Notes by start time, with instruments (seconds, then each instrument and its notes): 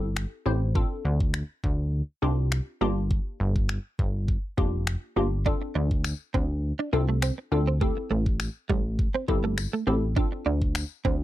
Already playing: analog synth bass G1, synth pluck C4 E4 G4 A4
0.17 finger snap
0.46 analog synth bass A1, synth pluck C4 E4 G4 C5
0.75 synth pluck C4 D4 F4 A4, kick
1.05 analog synth bass D2
1.20 kick
1.34 finger snap
1.64 analog synth bass D2, kick
2.22 analog synth bass C2, synth pluck C4 D4 F4 G4
2.52 finger snap
2.81 analog synth bass G1, synth pluck A#3 D4 F4 G4
3.11 kick
3.40 analog synth bass G1
3.56 kick
3.69 finger snap
3.99 analog synth bass G1, kick
4.28 kick
4.58 analog synth bass F1, synth pluck A#3 D4 F4 G4, kick
4.87 finger snap
5.16 analog synth bass G1, synth pluck A#3 D4 F4 G4
5.46 synth pluck C4 D4 F4 A4, clean electric guitar D4, kick
5.62 muted clean electric guitar stroke
5.75 analog synth bass D2, clean electric guitar D4
5.91 kick
6.04 finger snap, tambourine
6.34 analog synth bass D2, clean electric guitar C4, kick
6.79 clean electric guitar D4
6.93 analog synth bass C2, synth pluck C4 D4 F4 A4, muted clean electric guitar stroke
7.09 clean electric guitar A3
7.22 clean electric guitar C4, finger snap, tambourine
7.38 muted clean electric guitar stroke
7.52 analog synth bass D2, synth pluck C4 D4 F4 A4
7.67 clean electric guitar C4
7.81 clean electric guitar A3, synth pluck C4 E4 G4 A4, kick
7.97 muted clean electric guitar stroke
8.11 analog synth bass A1, clean electric guitar A3
8.26 kick
8.40 finger snap, tambourine
8.69 analog synth bass A1, clean electric guitar G3, kick
8.99 kick
9.14 clean electric guitar C4
9.28 analog synth bass G1, synth pluck C4 E4 G4 A4, muted clean electric guitar stroke, kick
9.44 clean electric guitar A3
9.58 finger snap, muted clean electric guitar stroke, tambourine
9.73 clean electric guitar A3
9.87 analog synth bass A1, synth pluck C4 E4 G4 A4, clean electric guitar C4
10.16 synth pluck C4 D4 F4 A4, clean electric guitar D4, kick
10.32 muted clean electric guitar stroke
10.46 analog synth bass D2, clean electric guitar D4
10.62 kick
10.75 finger snap, tambourine
11.05 analog synth bass D2, clean electric guitar C4, kick